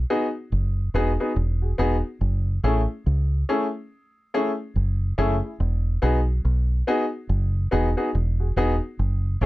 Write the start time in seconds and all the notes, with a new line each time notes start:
0.10 B3 D#4 F#4 G#4
0.52 F#1
0.94 E1 B3 D#4 F#4 G#4
1.20 B3 D#4 F#4 G#4
1.36 E1
1.62 F#4 G#4
1.78 E1 B3 D#4 F#4 G#4
2.21 F#1
2.63 A1 A3 C#4 E4 G#4
3.06 C#2
3.49 A3 C#4 E4 G#4
4.34 A3 C#4 E4 G#4
4.76 F#1
5.18 F#1 A3 C#4 E4 G#4
5.44 E4 G#4
5.60 E1
6.02 B1 B3 D#4 F#4 G#4
6.45 B1
6.87 B3 D#4 F#4 G#4
7.29 F#1
7.71 E1 B3 D#4 F#4 G#4
7.97 B3 D#4 F#4 G#4
8.15 E1
8.40 F#4 G#4
8.56 E1 B3 D#4 F#4 G#4
8.99 F#1
9.41 A1 A3 C#4 E4